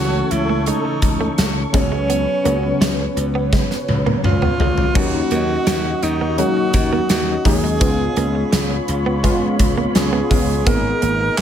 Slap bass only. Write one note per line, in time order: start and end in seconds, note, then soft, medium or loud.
0.00 0.21 C#2 medium
0.31 0.70 C#2 medium
1.02 1.28 C#2 loud
1.38 1.64 C#2 medium
1.74 2.25 C#2 medium
2.45 2.71 C#2 medium
2.81 3.06 C#2 medium
3.17 3.55 C#2 medium
3.88 4.14 C#2 medium
4.24 4.49 C#2 medium
4.59 4.85 C#2 medium
4.95 5.21 D#2 medium
5.31 5.57 D#2 medium
5.67 5.92 D#2 medium
6.03 6.41 D#2 medium
6.74 6.99 D#2 medium
7.10 7.35 D#2 medium
7.45 7.81 D#2 loud
7.81 8.07 C#2 loud
8.17 8.42 C#2 loud
8.53 8.78 C#2 medium
8.89 9.27 C#2 medium
9.60 9.85 C#2 loud
9.95 10.21 C#2 medium
10.31 10.67 C#2 loud
10.67 10.92 G#1 loud
11.03 11.28 G#1 medium
11.38 11.41 G#1 medium